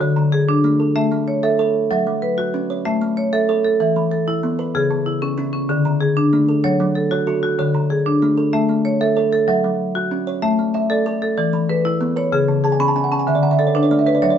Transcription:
Already playing: marimba F#4, kalimba A4
0.01 marimba D3, kalimba C#5
0.16 kalimba D3
0.32 marimba G#4
0.49 marimba D4
0.64 kalimba A3
0.80 kalimba A4
0.96 marimba A3 E5
1.12 kalimba A3
1.28 marimba C#5
1.43 marimba A4, kalimba E5
1.59 kalimba A4 C#5
1.91 marimba F#3, kalimba E5
2.07 kalimba F#3
2.22 marimba B4
2.38 marimba F#4
2.54 kalimba C#4
2.70 kalimba C#5
2.85 marimba A3 E5
3.02 kalimba A3
3.17 marimba C#5
3.33 marimba A4, kalimba E5
3.49 kalimba A4 C#5
3.64 marimba A4
3.80 marimba E3, kalimba E5
3.96 kalimba E3
4.12 marimba A4
4.28 marimba E4
4.43 kalimba B3
4.59 kalimba B4
4.75 marimba C#3 G#4
4.91 kalimba C#3
5.06 marimba E4
5.22 marimba C#4, kalimba G#4
5.38 kalimba C#4 E4
5.53 marimba C#4
5.69 marimba D3, kalimba G#4
5.85 kalimba D3
6.01 marimba G#4
6.17 marimba D4
6.33 kalimba A3
6.49 kalimba A4
6.64 marimba F#3 C#5
6.80 kalimba F#3
6.95 marimba A4
7.11 marimba F#4, kalimba C#5
7.27 kalimba F#4 A4
7.43 marimba F#4
7.59 marimba D3, kalimba C#5
7.74 kalimba D3
7.90 marimba G#4
8.06 marimba D4
8.22 kalimba A3
8.38 kalimba A4
8.53 marimba A3 E5
8.69 kalimba A3
8.85 marimba C#5
9.01 marimba A4, kalimba E5
9.17 kalimba A4 C#5
9.33 marimba A4
9.48 marimba F#3, kalimba E5
9.64 kalimba F#3
9.95 marimba F#4
10.11 kalimba C#4
10.27 kalimba C#5
10.42 marimba A3 E5
10.59 kalimba A3
10.74 marimba E5, kalimba E5
10.90 marimba A4, kalimba D5
11.06 kalimba A4
11.22 marimba A4
11.37 marimba E3, kalimba D5
11.53 kalimba E3
11.69 kalimba G#4, marimba B4
11.85 marimba E4
12.01 kalimba B3
12.16 kalimba B4, marimba C#5
12.32 marimba C#3 G#4
12.48 kalimba C#3
12.64 marimba G#4, kalimba A5
12.72 kalimba G#5
12.80 marimba C#4, kalimba B5
12.88 kalimba A5
12.96 kalimba C#4 G#5
13.04 kalimba F#5
13.12 marimba C#4, kalimba A5
13.19 kalimba G#5
13.27 marimba D3, kalimba E5
13.35 kalimba D5
13.43 kalimba D3 F#5
13.51 kalimba E5
13.59 marimba A4, kalimba D5
13.67 kalimba C#5
13.75 marimba D4, kalimba B4
13.83 kalimba C#5
13.91 kalimba A3 D5
13.99 kalimba E5
14.06 marimba B4, kalimba C#5
14.15 kalimba D5
14.22 marimba F#3 C#5, kalimba E5
14.30 kalimba D5

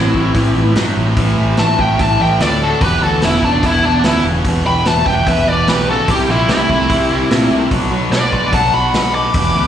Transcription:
Already playing: picked electric bass A1, distorted electric guitar A2 F#3, lead electric guitar C4 E4, tonewheel organ C4 E4 G4 B4
0.14 picked electric bass A1, distorted electric guitar A2 F#3, kick
0.34 picked electric bass A1, distorted electric guitar A2 E3, kick, open hi-hat
0.55 picked electric bass A1, distorted electric guitar A2 E3
0.75 picked electric bass G2, distorted electric guitar A2 F#3, snare, open hi-hat
0.97 picked electric bass A1, distorted electric guitar A2 F#3
1.16 picked electric bass A1, distorted electric guitar A2 E3, kick, open hi-hat
1.37 picked electric bass A1, distorted electric guitar A2 E3
1.57 picked electric bass A1, distorted electric guitar A2 F#3, lead electric guitar E5 A5, snare, open hi-hat
1.79 picked electric bass A1, distorted electric guitar A2 F#3, lead electric guitar E5 G5, kick
1.99 picked electric bass A1, distorted electric guitar A2 E3, lead electric guitar E5 A5, kick, open hi-hat
2.20 picked electric bass A1, distorted electric guitar A2 E3, lead electric guitar E5 G5
2.40 picked electric bass D2, distorted electric guitar A2 F#3, lead electric guitar A4 D5, snare, open hi-hat
2.61 distorted electric guitar A2 F#3, lead electric guitar F#4 A4
2.81 picked electric bass E1, distorted electric guitar E2 B2, tonewheel organ D4 F#4 G4 B4, lead electric guitar G4 B4, kick, open hi-hat
3.01 picked electric bass D2, distorted electric guitar E2 B2, lead electric guitar F#4 A4
3.22 picked electric bass E1, distorted electric guitar E2 C#3, lead electric guitar B3 E4, snare, open hi-hat
3.43 picked electric bass E1, distorted electric guitar E2 C#3, lead electric guitar B3 D4, kick
3.62 picked electric bass E1, distorted electric guitar E2 B2, lead electric guitar B3 E4, kick, open hi-hat
3.84 picked electric bass E1, distorted electric guitar E2 B2, lead electric guitar B3 D4
4.04 picked electric bass D2, distorted electric guitar E2 C#3, lead electric guitar B3 E4, snare, open hi-hat
4.25 picked electric bass E1, distorted electric guitar E2 C#3
4.44 picked electric bass E1, distorted electric guitar E2 B2, kick, open hi-hat
4.65 picked electric bass E1, distorted electric guitar E2 B2, lead electric guitar G5 B5
4.85 picked electric bass E1, distorted electric guitar E2 C#3, lead electric guitar E5 A5, snare, open hi-hat
5.06 picked electric bass E1, distorted electric guitar E2 C#3, lead electric guitar E5 G5, kick
5.27 picked electric bass E1, distorted electric guitar E2 B2, lead electric guitar B4 E5, kick, open hi-hat
5.47 picked electric bass E1, distorted electric guitar E2 B2, lead electric guitar B4 D5
5.67 picked electric bass B1, distorted electric guitar E2 C#3, lead electric guitar G4 B4, snare, open hi-hat
5.88 distorted electric guitar E2 C#3, lead electric guitar F#4 A4
6.08 picked electric bass C2, distorted electric guitar C3 G3, tonewheel organ D4 E4 G4 A#4, lead electric guitar E4 G4, kick, open hi-hat
6.29 picked electric bass A#1, distorted electric guitar C3 G3, lead electric guitar C4 E4
6.49 picked electric bass C2, distorted electric guitar C3 A3, lead electric guitar C4 E4, snare, open hi-hat
6.69 picked electric bass C2, distorted electric guitar C3 A3, kick
6.90 picked electric bass C2, distorted electric guitar C3 G3, kick, open hi-hat
7.10 picked electric bass C2, distorted electric guitar C3 G3
7.30 picked electric bass A#2, distorted electric guitar C3 A3, snare, open hi-hat
7.50 picked electric bass C2, distorted electric guitar C3 A3
7.71 picked electric bass B1, distorted electric guitar B2 F#3, tonewheel organ D4 D#4 F#4 A4, kick, open hi-hat
7.90 picked electric bass B1, distorted electric guitar B2 F#3
8.10 picked electric bass B1, distorted electric guitar B2 G#3, lead electric guitar D5, snare, open hi-hat
8.14 lead electric guitar B4
8.32 picked electric bass B1, distorted electric guitar B2 G#3, kick
8.52 picked electric bass B1, distorted electric guitar B2 F#3, lead electric guitar F#5 A5, kick, open hi-hat
8.73 picked electric bass B1, distorted electric guitar B2 F#3, lead electric guitar F#5 B5
8.94 picked electric bass B1, distorted electric guitar B2 G#3, snare, open hi-hat
9.14 distorted electric guitar B2 G#3, lead electric guitar B5 D6
9.34 picked electric bass E1, distorted electric guitar E2 B2, tonewheel organ D4 F#4 G4 B4, kick, open hi-hat
9.55 picked electric bass D2, distorted electric guitar E2 B2

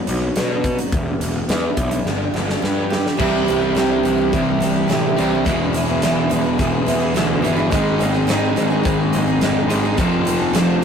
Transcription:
Already playing: steel-string acoustic guitar B3 D#4
0.07 picked electric bass B1, steel-string acoustic guitar F#3, closed hi-hat
0.36 picked electric bass B2, steel-string acoustic guitar D#4, snare, closed hi-hat
0.64 steel-string acoustic guitar F#4, kick, closed hi-hat
0.79 closed hi-hat
0.92 picked electric bass E1, steel-string acoustic guitar E2, kick, closed hi-hat
1.20 picked electric bass E1, steel-string acoustic guitar E3, closed hi-hat
1.49 picked electric bass E2, steel-string acoustic guitar E4, snare, closed hi-hat
1.77 picked electric bass B1, steel-string acoustic guitar E3, kick, closed hi-hat
1.91 closed hi-hat
2.05 picked electric bass G1, steel-string acoustic guitar G2, snare
2.34 picked electric bass G1, steel-string acoustic guitar F3, snare
2.50 snare
2.62 picked electric bass G2, steel-string acoustic guitar B3, snare
2.90 steel-string acoustic guitar G4, snare
3.06 snare
3.17 picked electric bass C2, steel-string acoustic guitar C3 E3 G3 E4 G4, kick, crash
3.22 distorted electric guitar C4
3.46 picked electric bass C2, steel-string acoustic guitar E3 G3 E4 G4, closed hi-hat
3.60 steel-string acoustic guitar G3 E4 G4
3.75 picked electric bass C2, steel-string acoustic guitar C3 E3 G3 E4 G4, snare, closed hi-hat
4.03 picked electric bass C2, steel-string acoustic guitar E3 G3 E4 G4, closed hi-hat
4.18 steel-string acoustic guitar G3 E4 G4
4.32 picked electric bass C2, steel-string acoustic guitar E3 G3 E4 G4, kick, closed hi-hat
4.60 picked electric bass C2, steel-string acoustic guitar E3 G3 E4 G4, closed hi-hat
4.74 steel-string acoustic guitar G3 E4 G4
4.88 picked electric bass A1, steel-string acoustic guitar C3 E3 G3 E4 G4, snare, closed hi-hat
5.16 picked electric bass C2, distorted electric guitar C3 C4, steel-string acoustic guitar E3 G3 E4 G4, snare, closed hi-hat
5.32 steel-string acoustic guitar G3 E4 G4
5.45 picked electric bass E1, steel-string acoustic guitar E2 B2 E3 B3 E4 G#4, kick, closed hi-hat
5.73 steel-string acoustic guitar E3 B3 E4 G#4, closed hi-hat
5.88 steel-string acoustic guitar E3 B3 E4 G#4
6.02 picked electric bass E1, steel-string acoustic guitar E2 B2 E3 B3 E4 G#4, snare, closed hi-hat
6.30 picked electric bass E1, steel-string acoustic guitar E3 B3 E4 G#4, closed hi-hat
6.44 steel-string acoustic guitar E3 B3 E4 G#4
6.58 picked electric bass E1, steel-string acoustic guitar E3 B3 E4 G#4, kick, closed hi-hat
6.86 picked electric bass E2, steel-string acoustic guitar E3 B3 E4 G#4, closed hi-hat
7.00 steel-string acoustic guitar E3 B3 E4 G#4
7.14 picked electric bass D2, steel-string acoustic guitar E2 B2 E3 B3 E4 G#4, snare, closed hi-hat
7.42 picked electric bass G1, distorted electric guitar B2, steel-string acoustic guitar E3 B3 E4 G#4, closed hi-hat
7.46 distorted electric guitar E2
7.56 steel-string acoustic guitar E3 B3 E4 G#4
7.70 picked electric bass G#1, steel-string acoustic guitar G#2 D#3 G#3 C4 D#4 G#4, kick, closed hi-hat
7.99 picked electric bass G#1, steel-string acoustic guitar G#3 C4 D#4 G#4, closed hi-hat
8.13 steel-string acoustic guitar G#3 C4 D#4 G#4
8.27 picked electric bass G#1, steel-string acoustic guitar G#2 D#3 G#3 C4 D#4 G#4, snare, closed hi-hat
8.56 picked electric bass G#1, steel-string acoustic guitar G#3 C4 D#4 G#4, closed hi-hat
8.70 steel-string acoustic guitar G#3 C4 D#4 G#4
8.83 picked electric bass G#1, steel-string acoustic guitar G#3 C4 D#4 G#4, kick, closed hi-hat
9.13 picked electric bass G#1, steel-string acoustic guitar G#3 C4 D#4 G#4, closed hi-hat
9.27 steel-string acoustic guitar G#3 C4 D#4 G#4
9.41 picked electric bass F1, steel-string acoustic guitar G#2 D#3 G#3 C4 D#4 G#4, snare, closed hi-hat
9.70 picked electric bass G#1, distorted electric guitar G#2 D#3, steel-string acoustic guitar G#3 C4 D#4 G#4, closed hi-hat
9.84 steel-string acoustic guitar G#3 C4 D#4 G#4
9.96 picked electric bass F1, distorted electric guitar F2 C3, steel-string acoustic guitar F3 C4 F4 A4, kick, closed hi-hat
10.25 steel-string acoustic guitar F3 C4 F4 A4, closed hi-hat
10.39 steel-string acoustic guitar C4 F4 A4
10.53 picked electric bass F1, steel-string acoustic guitar F3 C4 F4 A4, snare, closed hi-hat

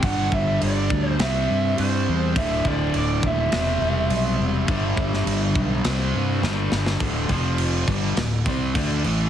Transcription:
0.03 fingered electric bass G1, overdriven electric guitar G2 D3 G3, lead electric guitar F#5, kick, crash
0.32 fingered electric bass G1, lead electric guitar E5, kick
0.61 fingered electric bass G1, lead electric guitar D5, crash
0.90 fingered electric bass D2, kick
1.09 lead electric guitar C5
1.18 fingered electric bass C2, overdriven electric guitar C3 G3 C4, lead electric guitar E5, snare, crash
1.50 fingered electric bass G2
1.78 fingered electric bass G2, lead electric guitar C5, crash
2.08 fingered electric bass E2
2.36 fingered electric bass D1, overdriven electric guitar D2 A2 D3, lead electric guitar E5, kick, crash
2.65 fingered electric bass D1, lead electric guitar D5, kick
2.94 fingered electric bass D1, lead electric guitar D5, crash
3.23 fingered electric bass D#1, lead electric guitar E5, kick
3.52 fingered electric bass E1, overdriven electric guitar C3 G3 C4, snare, crash
3.81 fingered electric bass E1
4.10 fingered electric bass B1, crash
4.40 fingered electric bass E1
4.67 fingered electric bass G1, overdriven electric guitar G2 D3 G3, kick, crash
4.97 fingered electric bass G1, kick
5.13 snare
5.26 fingered electric bass G1, crash
5.55 fingered electric bass B1, kick
5.83 fingered electric bass C2, overdriven electric guitar C3 G3 C4, snare, crash
6.14 fingered electric bass G2
6.42 fingered electric bass G1, overdriven electric guitar G2 D3 G3, snare
6.72 fingered electric bass G1, snare
6.86 snare
7.00 fingered electric bass D1, overdriven electric guitar D2 A2 D3, kick, crash
7.29 fingered electric bass F1, overdriven electric guitar F2 C3 F3, kick, crash
7.58 crash
7.88 fingered electric bass G1, overdriven electric guitar G2 D3 G3, kick, crash
8.17 fingered electric bass D1, overdriven electric guitar D2 A2, snare, crash
8.46 fingered electric bass C2, overdriven electric guitar C3 G3 C4, kick, crash
8.75 fingered electric bass D2, overdriven electric guitar D3 A3 D4, kick, crash
9.04 fingered electric bass A1, overdriven electric guitar A2 E3 A3, crash

